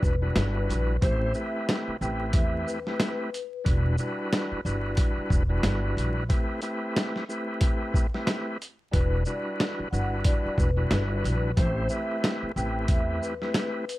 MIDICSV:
0, 0, Header, 1, 6, 480
1, 0, Start_track
1, 0, Tempo, 659341
1, 745, Time_signature, 4, 2, 24, 8
1, 10182, End_track
2, 0, Start_track
2, 0, Title_t, "Vibraphone"
2, 0, Program_c, 0, 11
2, 20, Note_on_c, 0, 71, 87
2, 713, Note_off_c, 0, 71, 0
2, 743, Note_on_c, 0, 72, 100
2, 960, Note_off_c, 0, 72, 0
2, 980, Note_on_c, 0, 76, 79
2, 1198, Note_off_c, 0, 76, 0
2, 1467, Note_on_c, 0, 79, 81
2, 1595, Note_off_c, 0, 79, 0
2, 1695, Note_on_c, 0, 76, 86
2, 1915, Note_off_c, 0, 76, 0
2, 1941, Note_on_c, 0, 71, 85
2, 2634, Note_off_c, 0, 71, 0
2, 6504, Note_on_c, 0, 71, 95
2, 6720, Note_off_c, 0, 71, 0
2, 6741, Note_on_c, 0, 74, 79
2, 6958, Note_off_c, 0, 74, 0
2, 7214, Note_on_c, 0, 78, 76
2, 7348, Note_off_c, 0, 78, 0
2, 7459, Note_on_c, 0, 74, 89
2, 7678, Note_off_c, 0, 74, 0
2, 7704, Note_on_c, 0, 71, 84
2, 8395, Note_off_c, 0, 71, 0
2, 8425, Note_on_c, 0, 72, 104
2, 8640, Note_off_c, 0, 72, 0
2, 8661, Note_on_c, 0, 76, 78
2, 8878, Note_off_c, 0, 76, 0
2, 9146, Note_on_c, 0, 79, 82
2, 9275, Note_off_c, 0, 79, 0
2, 9376, Note_on_c, 0, 76, 89
2, 9596, Note_off_c, 0, 76, 0
2, 9622, Note_on_c, 0, 71, 84
2, 10182, Note_off_c, 0, 71, 0
2, 10182, End_track
3, 0, Start_track
3, 0, Title_t, "Tonewheel organ"
3, 0, Program_c, 1, 16
3, 0, Note_on_c, 1, 55, 91
3, 0, Note_on_c, 1, 62, 85
3, 0, Note_on_c, 1, 64, 88
3, 0, Note_on_c, 1, 66, 90
3, 0, Note_on_c, 1, 71, 99
3, 110, Note_off_c, 1, 55, 0
3, 111, Note_off_c, 1, 62, 0
3, 112, Note_off_c, 1, 64, 0
3, 113, Note_off_c, 1, 66, 0
3, 114, Note_off_c, 1, 71, 0
3, 156, Note_on_c, 1, 55, 106
3, 159, Note_on_c, 1, 62, 87
3, 160, Note_on_c, 1, 64, 96
3, 163, Note_on_c, 1, 66, 92
3, 165, Note_on_c, 1, 71, 107
3, 700, Note_off_c, 1, 55, 0
3, 701, Note_off_c, 1, 62, 0
3, 702, Note_off_c, 1, 64, 0
3, 703, Note_off_c, 1, 66, 0
3, 704, Note_off_c, 1, 71, 0
3, 736, Note_on_c, 1, 57, 93
3, 739, Note_on_c, 1, 60, 81
3, 741, Note_on_c, 1, 64, 85
3, 743, Note_on_c, 1, 67, 82
3, 745, Note_on_c, 1, 72, 106
3, 965, Note_off_c, 1, 57, 0
3, 966, Note_off_c, 1, 60, 0
3, 967, Note_off_c, 1, 64, 0
3, 969, Note_off_c, 1, 67, 0
3, 969, Note_off_c, 1, 72, 0
3, 977, Note_on_c, 1, 57, 91
3, 980, Note_on_c, 1, 60, 90
3, 982, Note_on_c, 1, 64, 96
3, 984, Note_on_c, 1, 67, 89
3, 986, Note_on_c, 1, 71, 109
3, 1430, Note_off_c, 1, 57, 0
3, 1432, Note_off_c, 1, 60, 0
3, 1432, Note_off_c, 1, 64, 0
3, 1434, Note_off_c, 1, 67, 0
3, 1434, Note_off_c, 1, 71, 0
3, 1464, Note_on_c, 1, 57, 98
3, 1465, Note_on_c, 1, 60, 84
3, 1469, Note_on_c, 1, 64, 90
3, 1471, Note_on_c, 1, 67, 90
3, 1472, Note_on_c, 1, 71, 102
3, 2030, Note_off_c, 1, 57, 0
3, 2031, Note_off_c, 1, 60, 0
3, 2033, Note_off_c, 1, 64, 0
3, 2034, Note_off_c, 1, 67, 0
3, 2034, Note_off_c, 1, 71, 0
3, 2085, Note_on_c, 1, 57, 103
3, 2088, Note_on_c, 1, 60, 92
3, 2090, Note_on_c, 1, 64, 87
3, 2092, Note_on_c, 1, 67, 96
3, 2094, Note_on_c, 1, 71, 106
3, 2400, Note_off_c, 1, 57, 0
3, 2401, Note_off_c, 1, 60, 0
3, 2402, Note_off_c, 1, 64, 0
3, 2403, Note_off_c, 1, 67, 0
3, 2404, Note_off_c, 1, 71, 0
3, 2650, Note_on_c, 1, 55, 92
3, 2653, Note_on_c, 1, 62, 88
3, 2655, Note_on_c, 1, 64, 91
3, 2657, Note_on_c, 1, 66, 92
3, 2659, Note_on_c, 1, 71, 100
3, 2882, Note_off_c, 1, 55, 0
3, 2883, Note_off_c, 1, 62, 0
3, 2884, Note_off_c, 1, 64, 0
3, 2885, Note_off_c, 1, 66, 0
3, 2886, Note_off_c, 1, 71, 0
3, 2902, Note_on_c, 1, 55, 95
3, 2904, Note_on_c, 1, 62, 86
3, 2906, Note_on_c, 1, 64, 93
3, 2908, Note_on_c, 1, 66, 83
3, 2910, Note_on_c, 1, 71, 108
3, 3352, Note_off_c, 1, 55, 0
3, 3354, Note_off_c, 1, 62, 0
3, 3354, Note_off_c, 1, 64, 0
3, 3355, Note_off_c, 1, 66, 0
3, 3356, Note_off_c, 1, 71, 0
3, 3384, Note_on_c, 1, 55, 85
3, 3386, Note_on_c, 1, 62, 86
3, 3388, Note_on_c, 1, 64, 92
3, 3391, Note_on_c, 1, 66, 89
3, 3393, Note_on_c, 1, 71, 102
3, 3950, Note_off_c, 1, 55, 0
3, 3952, Note_off_c, 1, 62, 0
3, 3953, Note_off_c, 1, 64, 0
3, 3954, Note_off_c, 1, 66, 0
3, 3955, Note_off_c, 1, 71, 0
3, 3997, Note_on_c, 1, 55, 107
3, 3999, Note_on_c, 1, 62, 87
3, 4001, Note_on_c, 1, 64, 94
3, 4003, Note_on_c, 1, 66, 97
3, 4006, Note_on_c, 1, 71, 109
3, 4540, Note_off_c, 1, 55, 0
3, 4541, Note_off_c, 1, 62, 0
3, 4542, Note_off_c, 1, 64, 0
3, 4543, Note_off_c, 1, 66, 0
3, 4545, Note_off_c, 1, 71, 0
3, 4578, Note_on_c, 1, 57, 92
3, 4580, Note_on_c, 1, 60, 85
3, 4582, Note_on_c, 1, 64, 87
3, 4584, Note_on_c, 1, 67, 81
3, 4586, Note_on_c, 1, 71, 107
3, 4806, Note_off_c, 1, 57, 0
3, 4807, Note_off_c, 1, 60, 0
3, 4808, Note_off_c, 1, 64, 0
3, 4809, Note_off_c, 1, 67, 0
3, 4810, Note_off_c, 1, 71, 0
3, 4819, Note_on_c, 1, 57, 93
3, 4821, Note_on_c, 1, 60, 89
3, 4823, Note_on_c, 1, 64, 90
3, 4825, Note_on_c, 1, 67, 85
3, 4828, Note_on_c, 1, 71, 109
3, 5271, Note_off_c, 1, 57, 0
3, 5272, Note_off_c, 1, 60, 0
3, 5273, Note_off_c, 1, 64, 0
3, 5274, Note_off_c, 1, 67, 0
3, 5275, Note_off_c, 1, 71, 0
3, 5306, Note_on_c, 1, 57, 100
3, 5308, Note_on_c, 1, 60, 83
3, 5310, Note_on_c, 1, 64, 90
3, 5312, Note_on_c, 1, 67, 85
3, 5314, Note_on_c, 1, 71, 105
3, 5871, Note_off_c, 1, 57, 0
3, 5872, Note_off_c, 1, 60, 0
3, 5873, Note_off_c, 1, 64, 0
3, 5875, Note_off_c, 1, 67, 0
3, 5876, Note_off_c, 1, 71, 0
3, 5927, Note_on_c, 1, 57, 99
3, 5929, Note_on_c, 1, 60, 90
3, 5931, Note_on_c, 1, 64, 87
3, 5933, Note_on_c, 1, 67, 96
3, 5936, Note_on_c, 1, 71, 106
3, 6241, Note_off_c, 1, 57, 0
3, 6242, Note_off_c, 1, 60, 0
3, 6243, Note_off_c, 1, 64, 0
3, 6244, Note_off_c, 1, 67, 0
3, 6245, Note_off_c, 1, 71, 0
3, 6490, Note_on_c, 1, 55, 93
3, 6492, Note_on_c, 1, 62, 87
3, 6495, Note_on_c, 1, 64, 87
3, 6498, Note_on_c, 1, 66, 89
3, 6499, Note_on_c, 1, 71, 102
3, 6722, Note_off_c, 1, 55, 0
3, 6723, Note_off_c, 1, 62, 0
3, 6724, Note_off_c, 1, 64, 0
3, 6726, Note_off_c, 1, 66, 0
3, 6726, Note_off_c, 1, 71, 0
3, 6743, Note_on_c, 1, 55, 96
3, 6745, Note_on_c, 1, 62, 84
3, 6747, Note_on_c, 1, 64, 91
3, 6750, Note_on_c, 1, 66, 81
3, 6751, Note_on_c, 1, 71, 104
3, 7193, Note_off_c, 1, 55, 0
3, 7194, Note_off_c, 1, 62, 0
3, 7195, Note_off_c, 1, 64, 0
3, 7196, Note_off_c, 1, 66, 0
3, 7197, Note_off_c, 1, 71, 0
3, 7225, Note_on_c, 1, 55, 86
3, 7227, Note_on_c, 1, 62, 88
3, 7229, Note_on_c, 1, 64, 89
3, 7231, Note_on_c, 1, 66, 92
3, 7233, Note_on_c, 1, 71, 101
3, 7791, Note_off_c, 1, 55, 0
3, 7792, Note_off_c, 1, 62, 0
3, 7793, Note_off_c, 1, 64, 0
3, 7794, Note_off_c, 1, 66, 0
3, 7795, Note_off_c, 1, 71, 0
3, 7837, Note_on_c, 1, 55, 107
3, 7839, Note_on_c, 1, 62, 86
3, 7841, Note_on_c, 1, 64, 96
3, 7843, Note_on_c, 1, 66, 93
3, 7846, Note_on_c, 1, 71, 112
3, 8380, Note_off_c, 1, 55, 0
3, 8381, Note_off_c, 1, 62, 0
3, 8382, Note_off_c, 1, 64, 0
3, 8383, Note_off_c, 1, 66, 0
3, 8385, Note_off_c, 1, 71, 0
3, 8418, Note_on_c, 1, 57, 89
3, 8420, Note_on_c, 1, 60, 83
3, 8421, Note_on_c, 1, 64, 88
3, 8423, Note_on_c, 1, 67, 82
3, 8427, Note_on_c, 1, 72, 107
3, 8646, Note_off_c, 1, 57, 0
3, 8647, Note_off_c, 1, 60, 0
3, 8648, Note_off_c, 1, 64, 0
3, 8648, Note_off_c, 1, 67, 0
3, 8650, Note_off_c, 1, 72, 0
3, 8658, Note_on_c, 1, 57, 94
3, 8660, Note_on_c, 1, 60, 90
3, 8663, Note_on_c, 1, 64, 93
3, 8665, Note_on_c, 1, 67, 88
3, 8667, Note_on_c, 1, 71, 112
3, 9111, Note_off_c, 1, 57, 0
3, 9112, Note_off_c, 1, 60, 0
3, 9113, Note_off_c, 1, 64, 0
3, 9114, Note_off_c, 1, 67, 0
3, 9115, Note_off_c, 1, 71, 0
3, 9146, Note_on_c, 1, 57, 98
3, 9148, Note_on_c, 1, 60, 88
3, 9150, Note_on_c, 1, 64, 91
3, 9152, Note_on_c, 1, 67, 87
3, 9154, Note_on_c, 1, 71, 105
3, 9711, Note_off_c, 1, 57, 0
3, 9712, Note_off_c, 1, 60, 0
3, 9713, Note_off_c, 1, 64, 0
3, 9714, Note_off_c, 1, 67, 0
3, 9715, Note_off_c, 1, 71, 0
3, 9767, Note_on_c, 1, 57, 103
3, 9768, Note_on_c, 1, 60, 91
3, 9770, Note_on_c, 1, 64, 86
3, 9772, Note_on_c, 1, 67, 95
3, 9774, Note_on_c, 1, 71, 108
3, 10080, Note_off_c, 1, 57, 0
3, 10081, Note_off_c, 1, 60, 0
3, 10082, Note_off_c, 1, 64, 0
3, 10083, Note_off_c, 1, 67, 0
3, 10084, Note_off_c, 1, 71, 0
3, 10182, End_track
4, 0, Start_track
4, 0, Title_t, "Upright bass"
4, 0, Program_c, 2, 32
4, 20, Note_on_c, 2, 28, 99
4, 231, Note_off_c, 2, 28, 0
4, 265, Note_on_c, 2, 31, 99
4, 473, Note_off_c, 2, 31, 0
4, 505, Note_on_c, 2, 34, 94
4, 714, Note_off_c, 2, 34, 0
4, 745, Note_on_c, 2, 33, 114
4, 954, Note_off_c, 2, 33, 0
4, 1464, Note_on_c, 2, 33, 90
4, 1673, Note_off_c, 2, 33, 0
4, 1701, Note_on_c, 2, 40, 100
4, 1911, Note_off_c, 2, 40, 0
4, 2665, Note_on_c, 2, 28, 101
4, 2874, Note_off_c, 2, 28, 0
4, 3384, Note_on_c, 2, 31, 90
4, 3593, Note_off_c, 2, 31, 0
4, 3861, Note_on_c, 2, 28, 100
4, 4071, Note_off_c, 2, 28, 0
4, 4105, Note_on_c, 2, 31, 96
4, 4314, Note_off_c, 2, 31, 0
4, 4345, Note_on_c, 2, 34, 90
4, 4554, Note_off_c, 2, 34, 0
4, 6505, Note_on_c, 2, 28, 105
4, 6714, Note_off_c, 2, 28, 0
4, 7225, Note_on_c, 2, 31, 92
4, 7434, Note_off_c, 2, 31, 0
4, 7701, Note_on_c, 2, 28, 94
4, 7911, Note_off_c, 2, 28, 0
4, 7943, Note_on_c, 2, 31, 98
4, 8153, Note_off_c, 2, 31, 0
4, 8185, Note_on_c, 2, 34, 95
4, 8393, Note_off_c, 2, 34, 0
4, 8425, Note_on_c, 2, 33, 114
4, 8634, Note_off_c, 2, 33, 0
4, 9144, Note_on_c, 2, 33, 93
4, 9353, Note_off_c, 2, 33, 0
4, 9381, Note_on_c, 2, 40, 103
4, 9592, Note_off_c, 2, 40, 0
4, 10182, End_track
5, 0, Start_track
5, 0, Title_t, "Muted upright bass strokes"
5, 1369, Note_on_c, 9, 29, 48
5, 1441, Note_off_c, 9, 29, 0
5, 3288, Note_on_c, 9, 29, 49
5, 3361, Note_off_c, 9, 29, 0
5, 3768, Note_on_c, 9, 29, 50
5, 3841, Note_off_c, 9, 29, 0
5, 7128, Note_on_c, 9, 29, 50
5, 7201, Note_off_c, 9, 29, 0
5, 7608, Note_on_c, 9, 29, 51
5, 7681, Note_off_c, 9, 29, 0
5, 9048, Note_on_c, 9, 29, 51
5, 9121, Note_off_c, 9, 29, 0
5, 10182, End_track
6, 0, Start_track
6, 0, Title_t, "Drums"
6, 20, Note_on_c, 9, 36, 100
6, 29, Note_on_c, 9, 82, 58
6, 93, Note_off_c, 9, 36, 0
6, 102, Note_off_c, 9, 82, 0
6, 260, Note_on_c, 9, 38, 118
6, 261, Note_on_c, 9, 42, 85
6, 265, Note_on_c, 9, 40, 95
6, 332, Note_off_c, 9, 38, 0
6, 333, Note_off_c, 9, 42, 0
6, 338, Note_off_c, 9, 40, 0
6, 513, Note_on_c, 9, 42, 56
6, 513, Note_on_c, 9, 82, 55
6, 586, Note_off_c, 9, 42, 0
6, 586, Note_off_c, 9, 82, 0
6, 744, Note_on_c, 9, 42, 85
6, 745, Note_on_c, 9, 36, 107
6, 817, Note_off_c, 9, 36, 0
6, 817, Note_off_c, 9, 42, 0
6, 975, Note_on_c, 9, 82, 53
6, 1048, Note_off_c, 9, 82, 0
6, 1228, Note_on_c, 9, 38, 116
6, 1228, Note_on_c, 9, 42, 75
6, 1234, Note_on_c, 9, 40, 91
6, 1301, Note_off_c, 9, 38, 0
6, 1301, Note_off_c, 9, 42, 0
6, 1307, Note_off_c, 9, 40, 0
6, 1470, Note_on_c, 9, 82, 55
6, 1543, Note_off_c, 9, 82, 0
6, 1697, Note_on_c, 9, 42, 109
6, 1701, Note_on_c, 9, 36, 112
6, 1770, Note_off_c, 9, 42, 0
6, 1774, Note_off_c, 9, 36, 0
6, 1950, Note_on_c, 9, 82, 58
6, 2023, Note_off_c, 9, 82, 0
6, 2088, Note_on_c, 9, 38, 34
6, 2160, Note_off_c, 9, 38, 0
6, 2181, Note_on_c, 9, 38, 117
6, 2182, Note_on_c, 9, 42, 85
6, 2187, Note_on_c, 9, 40, 91
6, 2254, Note_off_c, 9, 38, 0
6, 2255, Note_off_c, 9, 42, 0
6, 2260, Note_off_c, 9, 40, 0
6, 2433, Note_on_c, 9, 42, 56
6, 2433, Note_on_c, 9, 82, 54
6, 2506, Note_off_c, 9, 42, 0
6, 2506, Note_off_c, 9, 82, 0
6, 2665, Note_on_c, 9, 36, 104
6, 2665, Note_on_c, 9, 42, 87
6, 2738, Note_off_c, 9, 36, 0
6, 2738, Note_off_c, 9, 42, 0
6, 2896, Note_on_c, 9, 82, 54
6, 2969, Note_off_c, 9, 82, 0
6, 3149, Note_on_c, 9, 38, 114
6, 3149, Note_on_c, 9, 42, 76
6, 3155, Note_on_c, 9, 40, 91
6, 3222, Note_off_c, 9, 38, 0
6, 3222, Note_off_c, 9, 42, 0
6, 3228, Note_off_c, 9, 40, 0
6, 3391, Note_on_c, 9, 82, 54
6, 3464, Note_off_c, 9, 82, 0
6, 3618, Note_on_c, 9, 42, 112
6, 3622, Note_on_c, 9, 36, 111
6, 3691, Note_off_c, 9, 42, 0
6, 3695, Note_off_c, 9, 36, 0
6, 3861, Note_on_c, 9, 36, 103
6, 3871, Note_on_c, 9, 82, 59
6, 3934, Note_off_c, 9, 36, 0
6, 3944, Note_off_c, 9, 82, 0
6, 4101, Note_on_c, 9, 38, 115
6, 4102, Note_on_c, 9, 42, 85
6, 4107, Note_on_c, 9, 40, 91
6, 4174, Note_off_c, 9, 38, 0
6, 4175, Note_off_c, 9, 42, 0
6, 4180, Note_off_c, 9, 40, 0
6, 4355, Note_on_c, 9, 42, 57
6, 4355, Note_on_c, 9, 82, 56
6, 4428, Note_off_c, 9, 42, 0
6, 4428, Note_off_c, 9, 82, 0
6, 4585, Note_on_c, 9, 42, 88
6, 4586, Note_on_c, 9, 36, 106
6, 4658, Note_off_c, 9, 42, 0
6, 4659, Note_off_c, 9, 36, 0
6, 4817, Note_on_c, 9, 42, 53
6, 4817, Note_on_c, 9, 82, 51
6, 4889, Note_off_c, 9, 42, 0
6, 4889, Note_off_c, 9, 82, 0
6, 5070, Note_on_c, 9, 38, 115
6, 5070, Note_on_c, 9, 42, 76
6, 5076, Note_on_c, 9, 40, 89
6, 5143, Note_off_c, 9, 38, 0
6, 5143, Note_off_c, 9, 42, 0
6, 5149, Note_off_c, 9, 40, 0
6, 5211, Note_on_c, 9, 38, 40
6, 5284, Note_off_c, 9, 38, 0
6, 5312, Note_on_c, 9, 82, 55
6, 5385, Note_off_c, 9, 82, 0
6, 5538, Note_on_c, 9, 42, 112
6, 5542, Note_on_c, 9, 36, 114
6, 5611, Note_off_c, 9, 42, 0
6, 5615, Note_off_c, 9, 36, 0
6, 5781, Note_on_c, 9, 36, 101
6, 5792, Note_on_c, 9, 82, 58
6, 5854, Note_off_c, 9, 36, 0
6, 5865, Note_off_c, 9, 82, 0
6, 5929, Note_on_c, 9, 38, 34
6, 6002, Note_off_c, 9, 38, 0
6, 6021, Note_on_c, 9, 38, 110
6, 6022, Note_on_c, 9, 42, 86
6, 6026, Note_on_c, 9, 40, 91
6, 6093, Note_off_c, 9, 38, 0
6, 6094, Note_off_c, 9, 42, 0
6, 6099, Note_off_c, 9, 40, 0
6, 6273, Note_on_c, 9, 42, 54
6, 6273, Note_on_c, 9, 82, 55
6, 6346, Note_off_c, 9, 42, 0
6, 6346, Note_off_c, 9, 82, 0
6, 6504, Note_on_c, 9, 42, 87
6, 6506, Note_on_c, 9, 36, 108
6, 6577, Note_off_c, 9, 42, 0
6, 6578, Note_off_c, 9, 36, 0
6, 6737, Note_on_c, 9, 82, 53
6, 6809, Note_off_c, 9, 82, 0
6, 6989, Note_on_c, 9, 38, 113
6, 6989, Note_on_c, 9, 42, 76
6, 6995, Note_on_c, 9, 40, 91
6, 7062, Note_off_c, 9, 38, 0
6, 7062, Note_off_c, 9, 42, 0
6, 7068, Note_off_c, 9, 40, 0
6, 7232, Note_on_c, 9, 82, 54
6, 7304, Note_off_c, 9, 82, 0
6, 7458, Note_on_c, 9, 42, 110
6, 7462, Note_on_c, 9, 36, 110
6, 7531, Note_off_c, 9, 42, 0
6, 7534, Note_off_c, 9, 36, 0
6, 7701, Note_on_c, 9, 36, 101
6, 7711, Note_on_c, 9, 82, 57
6, 7774, Note_off_c, 9, 36, 0
6, 7784, Note_off_c, 9, 82, 0
6, 7941, Note_on_c, 9, 38, 116
6, 7942, Note_on_c, 9, 42, 87
6, 7947, Note_on_c, 9, 40, 92
6, 8013, Note_off_c, 9, 38, 0
6, 8014, Note_off_c, 9, 42, 0
6, 8019, Note_off_c, 9, 40, 0
6, 8193, Note_on_c, 9, 42, 54
6, 8193, Note_on_c, 9, 82, 55
6, 8266, Note_off_c, 9, 42, 0
6, 8266, Note_off_c, 9, 82, 0
6, 8424, Note_on_c, 9, 42, 86
6, 8425, Note_on_c, 9, 36, 105
6, 8497, Note_off_c, 9, 42, 0
6, 8498, Note_off_c, 9, 36, 0
6, 8656, Note_on_c, 9, 82, 53
6, 8729, Note_off_c, 9, 82, 0
6, 8909, Note_on_c, 9, 38, 113
6, 8910, Note_on_c, 9, 42, 78
6, 8915, Note_on_c, 9, 40, 92
6, 8982, Note_off_c, 9, 38, 0
6, 8982, Note_off_c, 9, 42, 0
6, 8988, Note_off_c, 9, 40, 0
6, 9152, Note_on_c, 9, 82, 55
6, 9225, Note_off_c, 9, 82, 0
6, 9378, Note_on_c, 9, 42, 111
6, 9381, Note_on_c, 9, 36, 112
6, 9451, Note_off_c, 9, 42, 0
6, 9454, Note_off_c, 9, 36, 0
6, 9630, Note_on_c, 9, 82, 59
6, 9703, Note_off_c, 9, 82, 0
6, 9768, Note_on_c, 9, 38, 33
6, 9840, Note_off_c, 9, 38, 0
6, 9859, Note_on_c, 9, 38, 111
6, 9860, Note_on_c, 9, 42, 84
6, 9865, Note_on_c, 9, 40, 93
6, 9932, Note_off_c, 9, 38, 0
6, 9933, Note_off_c, 9, 42, 0
6, 9938, Note_off_c, 9, 40, 0
6, 10112, Note_on_c, 9, 42, 55
6, 10112, Note_on_c, 9, 82, 56
6, 10182, Note_off_c, 9, 42, 0
6, 10182, Note_off_c, 9, 82, 0
6, 10182, End_track
0, 0, End_of_file